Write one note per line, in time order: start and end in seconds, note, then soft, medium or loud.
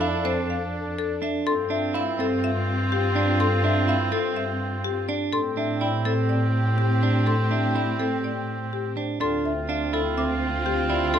0.00 1.33 F2 medium
0.00 1.18 D4 medium
0.00 0.32 E4 medium
0.00 1.18 A4 medium
0.00 0.32 F5 medium
0.25 0.57 C4 medium
0.25 0.57 C5 medium
0.50 0.81 F5 medium
0.99 1.30 A4 medium
1.22 1.53 D4 medium
1.22 1.54 E5 medium
1.45 5.20 G2 medium
1.45 5.05 C4 medium
1.45 5.05 F4 medium
1.45 1.78 A4 medium
1.45 1.78 C6 medium
1.70 2.02 D4 medium
1.70 2.02 E5 medium
1.94 2.26 E4 medium
1.94 2.26 E5 medium
1.94 2.26 F5 medium
2.19 2.50 C4 medium
2.19 2.51 A4 medium
2.44 2.75 E5 medium
2.92 3.23 G4 medium
3.15 3.47 D4 medium
3.15 3.47 D5 medium
3.40 3.71 A4 medium
3.40 3.71 C6 medium
3.64 3.95 D4 medium
3.64 3.96 E5 medium
3.88 4.19 E4 medium
3.88 4.20 E5 medium
3.88 4.20 F5 medium
4.12 4.44 C4 medium
4.12 4.44 A4 medium
4.36 4.68 E5 medium
4.84 5.16 G4 medium
5.09 5.40 D4 medium
5.09 5.40 D5 medium
5.33 9.07 A2 medium
5.33 8.92 C4 medium
5.33 8.92 G4 medium
5.33 5.64 A4 medium
5.33 5.65 C6 medium
5.57 5.89 D4 medium
5.57 5.89 E5 medium
5.81 6.13 E4 medium
5.81 6.13 D5 medium
5.81 6.13 G5 medium
6.05 6.37 C4 medium
6.05 6.37 A4 medium
6.29 6.61 D5 medium
6.78 7.10 G4 medium
7.03 7.34 D4 medium
7.03 7.34 C5 medium
7.26 7.58 A4 medium
7.26 7.58 C6 medium
7.51 7.82 D4 medium
7.51 7.83 E5 soft
7.75 8.07 E4 medium
7.75 8.07 D5 soft
7.75 8.07 G5 soft
7.99 8.31 C4 soft
7.99 8.31 A4 medium
8.24 8.55 D5 soft
8.73 9.04 G4 medium
8.97 9.19 D4 medium
8.97 9.28 C5 soft
9.20 11.19 D2 medium
9.20 11.19 C4 medium
9.20 9.52 D4 medium
9.20 11.19 F4 medium
9.20 9.52 A4 medium
9.20 9.52 C6 medium
9.45 9.76 E5 medium
9.69 10.00 D4 medium
9.69 10.01 E5 medium
9.69 10.00 F5 medium
9.93 10.24 E4 medium
9.93 10.25 A4 medium
10.17 10.49 C4 medium
10.17 10.49 E5 medium
10.17 10.49 D6 medium
10.66 10.97 G4 medium
10.90 11.19 E4 medium
10.90 11.19 D5 medium
11.14 11.19 D4 medium
11.14 11.19 A4 medium
11.14 11.19 C6 medium